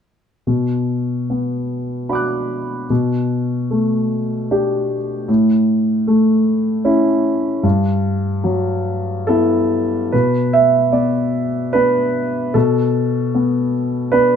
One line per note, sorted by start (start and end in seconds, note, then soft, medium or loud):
0.47 2.85 B2 soft
1.30 2.58 B3 soft
2.09 2.85 D4 soft
2.09 2.86 F#4 soft
2.09 2.86 B5 soft
2.09 2.87 D6 soft
2.15 2.88 F#6 soft
2.90 5.25 B2 soft
3.71 4.97 A3 soft
4.51 5.25 D4 soft
4.51 5.25 G4 soft
5.28 7.60 A2 soft
6.07 7.33 A3 soft
6.85 7.60 C#4 soft
6.85 7.60 E4 soft
7.63 10.08 G2 soft
8.44 9.79 F#3 soft
9.27 10.09 B3 soft
9.27 10.09 E4 soft
9.27 10.12 A4 medium
10.12 12.51 B2 soft
10.12 10.53 B4 soft
10.53 10.94 E5 medium
10.92 11.73 B3 soft
10.92 11.74 D5 soft
11.73 12.51 B3 soft
11.73 12.51 D4 soft
11.73 12.54 B4 medium
12.54 14.36 B2 soft
12.54 13.74 A4 medium
13.35 14.11 B3 soft
14.12 14.36 B3 soft
14.12 14.36 D4 soft
14.12 14.36 B4 medium